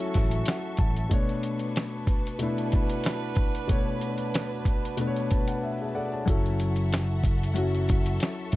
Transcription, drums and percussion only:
0.00 closed hi-hat soft
0.14 kick medium
0.14 snare soft
0.14 closed hi-hat medium
0.31 closed hi-hat medium
0.46 snare loud
0.46 closed hi-hat loud
0.77 kick loud
0.77 closed hi-hat medium
0.97 closed hi-hat medium
1.11 kick loud
1.11 closed hi-hat loud
1.29 closed hi-hat soft
1.43 closed hi-hat medium
1.59 closed hi-hat soft
1.76 snare loud
1.76 closed hi-hat medium
2.07 kick medium
2.07 closed hi-hat medium
2.27 closed hi-hat medium
2.39 closed hi-hat medium
2.58 closed hi-hat soft
2.72 kick medium
2.72 closed hi-hat medium
2.89 closed hi-hat medium
3.04 snare loud
3.04 closed hi-hat loud
3.35 kick loud
3.35 closed hi-hat medium
3.55 closed hi-hat medium
3.69 kick loud
3.69 closed hi-hat loud
4.01 closed hi-hat medium
4.18 closed hi-hat medium
4.34 snare loud
4.34 snare medium
4.34 closed hi-hat loud
4.65 kick medium
4.65 closed hi-hat medium
4.85 closed hi-hat medium
4.97 closed hi-hat medium
5.16 closed hi-hat soft
5.31 kick medium
5.31 closed hi-hat medium
5.48 closed hi-hat medium
6.28 kick loud
6.28 closed hi-hat loud
6.46 closed hi-hat soft
6.60 closed hi-hat medium
6.76 closed hi-hat medium
6.93 snare loud
6.93 snare medium
6.93 closed hi-hat loud
7.24 kick medium
7.24 closed hi-hat medium
7.43 closed hi-hat medium
7.56 closed hi-hat medium
7.75 closed hi-hat soft
7.89 kick medium
7.89 closed hi-hat medium
8.06 closed hi-hat medium
8.20 snare loud
8.20 closed hi-hat loud
8.52 kick loud
8.52 closed hi-hat medium

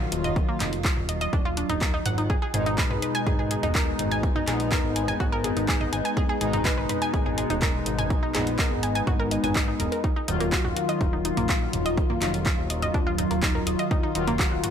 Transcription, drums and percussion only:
0.12 closed hi-hat loud
0.24 closed hi-hat soft
0.24 mid tom medium
0.36 kick loud
0.36 closed hi-hat soft
0.60 clap medium
0.60 closed hi-hat loud
0.60 mid tom medium
0.73 closed hi-hat soft
0.85 kick loud
0.85 clap loud
0.85 closed hi-hat soft
0.97 mid tom medium
1.09 closed hi-hat loud
1.21 closed hi-hat soft
1.33 kick loud
1.33 closed hi-hat soft
1.33 mid tom medium
1.57 closed hi-hat loud
1.70 closed hi-hat soft
1.70 mid tom medium
1.81 kick loud
1.81 clap loud
1.81 closed hi-hat soft
2.06 closed hi-hat loud
2.06 mid tom medium
2.18 closed hi-hat soft
2.30 kick loud
2.30 closed hi-hat soft
2.54 closed hi-hat loud
2.54 mid tom medium
2.66 closed hi-hat soft
2.78 kick loud
2.78 clap loud
2.78 closed hi-hat soft
2.91 mid tom medium
3.02 closed hi-hat loud
3.15 closed hi-hat soft
3.27 kick loud
3.27 closed hi-hat soft
3.27 mid tom medium
3.51 closed hi-hat loud
3.63 closed hi-hat soft
3.63 mid tom loud
3.75 kick loud
3.75 clap loud
3.75 closed hi-hat soft
3.99 closed hi-hat loud
3.99 mid tom medium
4.12 closed hi-hat soft
4.23 kick loud
4.23 closed hi-hat soft
4.36 mid tom medium
4.48 clap medium
4.48 closed hi-hat loud
4.60 closed hi-hat soft
4.72 kick loud
4.72 clap loud
4.72 closed hi-hat soft
4.72 mid tom loud
4.96 closed hi-hat loud
5.08 closed hi-hat soft
5.08 mid tom medium
5.20 kick loud
5.20 closed hi-hat soft
5.44 closed hi-hat loud
5.44 mid tom medium
5.57 closed hi-hat soft
5.68 kick loud
5.68 clap loud
5.68 closed hi-hat soft
5.81 mid tom loud
5.93 closed hi-hat loud
6.05 closed hi-hat soft
6.17 kick loud
6.17 closed hi-hat soft
6.17 mid tom medium
6.41 closed hi-hat loud
6.53 closed hi-hat soft
6.53 mid tom loud
6.65 kick loud
6.65 clap loud
6.65 closed hi-hat soft
6.89 closed hi-hat loud
6.89 mid tom loud
7.02 closed hi-hat soft
7.14 kick loud
7.14 closed hi-hat soft
7.26 mid tom medium
7.38 closed hi-hat medium
7.50 closed hi-hat soft
7.62 kick loud
7.62 clap loud
7.62 closed hi-hat soft
7.62 mid tom loud
7.86 closed hi-hat medium
7.99 closed hi-hat soft
7.99 mid tom medium
8.10 kick loud
8.10 closed hi-hat soft
8.35 clap medium
8.35 closed hi-hat loud
8.35 mid tom loud
8.47 closed hi-hat soft
8.59 kick loud
8.59 clap loud
8.59 closed hi-hat soft
8.71 mid tom medium
8.83 closed hi-hat loud
8.95 closed hi-hat soft
9.07 kick loud
9.07 closed hi-hat soft
9.07 mid tom medium
9.31 closed hi-hat loud
9.44 closed hi-hat medium
9.44 mid tom loud
9.56 kick loud
9.56 clap loud
9.56 closed hi-hat soft
9.80 closed hi-hat loud
9.80 mid tom loud
9.92 closed hi-hat soft
10.04 kick loud
10.04 closed hi-hat soft
10.28 closed hi-hat loud
10.28 mid tom medium
10.41 closed hi-hat soft
10.52 kick loud
10.52 clap loud
10.52 closed hi-hat soft
10.65 mid tom medium
10.77 closed hi-hat loud
10.89 closed hi-hat soft
11.01 kick loud
11.01 closed hi-hat soft
11.01 mid tom medium
11.25 closed hi-hat loud
11.37 closed hi-hat soft
11.37 mid tom loud
11.49 kick loud
11.49 clap loud
11.49 closed hi-hat soft
11.73 closed hi-hat loud
11.73 mid tom medium
11.86 closed hi-hat soft
11.98 kick loud
11.98 closed hi-hat soft
12.10 mid tom medium
12.22 clap medium
12.22 closed hi-hat loud
12.34 closed hi-hat soft
12.46 kick loud
12.46 clap loud
12.46 closed hi-hat soft
12.46 mid tom medium
12.70 closed hi-hat loud
12.82 closed hi-hat soft
12.82 mid tom medium
12.94 kick loud
12.94 closed hi-hat soft
13.18 closed hi-hat loud
13.18 mid tom medium
13.31 closed hi-hat soft
13.43 kick loud
13.43 clap loud
13.43 closed hi-hat soft
13.55 mid tom medium
13.67 closed hi-hat loud
13.79 closed hi-hat soft
13.91 kick loud
13.91 closed hi-hat soft
13.91 mid tom medium
14.15 closed hi-hat loud
14.28 closed hi-hat soft
14.28 mid tom medium
14.39 kick loud
14.39 clap loud
14.39 closed hi-hat soft
14.64 closed hi-hat loud
14.64 mid tom medium

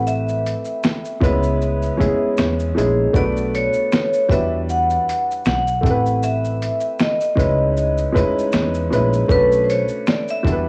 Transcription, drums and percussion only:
0.07 shaker medium
0.29 shaker soft
0.46 closed hi-hat medium
0.46 shaker soft
0.65 shaker soft
0.84 finger snap medium
0.84 snare loud
0.84 shaker medium
1.05 shaker soft
1.22 kick medium
1.22 closed hi-hat medium
1.22 shaker soft
1.43 shaker soft
1.62 shaker medium
1.82 shaker soft
2.01 kick medium
2.01 closed hi-hat medium
2.01 shaker soft
2.37 finger snap medium
2.37 snare loud
2.37 shaker medium
2.60 shaker soft
2.78 closed hi-hat medium
2.78 shaker soft
3.14 kick loud
3.14 shaker medium
3.37 shaker soft
3.55 closed hi-hat medium
3.55 shaker soft
3.73 shaker soft
3.92 finger snap medium
3.92 snare loud
3.92 shaker medium
4.13 shaker soft
4.29 kick loud
4.29 closed hi-hat medium
4.29 shaker soft
4.69 shaker medium
4.90 shaker soft
5.09 closed hi-hat medium
5.09 shaker soft
5.31 shaker soft
5.45 finger snap medium
5.45 snare loud
5.45 shaker medium
5.67 shaker soft
5.83 kick medium
5.83 closed hi-hat medium
5.83 shaker soft
6.06 shaker soft
6.23 shaker medium
6.45 shaker soft
6.62 closed hi-hat medium
6.62 shaker soft
6.81 shaker soft
6.99 finger snap medium
6.99 snare loud
6.99 shaker medium
7.21 shaker soft
7.37 kick medium
7.37 closed hi-hat medium
7.37 shaker soft
7.77 shaker medium
7.98 shaker soft
8.16 kick medium
8.16 closed hi-hat medium
8.16 shaker soft
8.39 shaker soft
8.52 finger snap medium
8.52 snare loud
8.52 shaker medium
8.74 shaker soft
8.93 closed hi-hat medium
8.93 shaker soft
9.13 shaker soft
9.29 kick loud
9.29 shaker medium
9.52 shaker soft
9.70 closed hi-hat medium
9.70 shaker soft
9.88 shaker soft
10.07 finger snap medium
10.07 snare loud
10.07 shaker medium
10.28 shaker soft
10.45 kick loud
10.45 closed hi-hat medium
10.45 shaker soft

